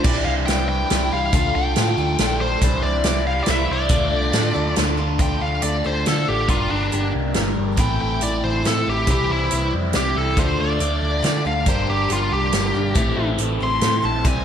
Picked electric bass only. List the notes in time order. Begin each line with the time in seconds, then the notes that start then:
0.05 C2
0.26 C2
0.48 C2
0.92 C2
1.12 C2
1.33 D2
1.55 C2
1.77 A2
1.98 D2
2.19 A#1
2.62 C2
2.84 C2
3.05 C2
3.48 C2
3.70 C2
3.90 D2
4.12 C2
4.33 A2
4.55 D2
4.77 D2
5.41 D2
5.63 D2
5.85 D2
6.07 D3
6.28 A1
6.71 G1
6.93 G1
7.15 C2
7.36 G1
7.58 G1
7.78 A1
8.02 A1
8.22 A1
8.43 A1
8.65 A2
8.87 A1
9.08 C2
9.30 C2
9.52 C2
9.74 F2
9.95 C2
10.16 C2
10.37 D2
10.60 D2
10.80 D2
11.02 D2
11.23 D3
11.45 D2
11.67 G1
11.89 G1
12.10 G1
12.31 C2
12.53 G1
12.74 G1
12.96 A1
13.17 A1
13.39 A1
13.61 A1
13.81 A2
14.03 A#1
14.25 C2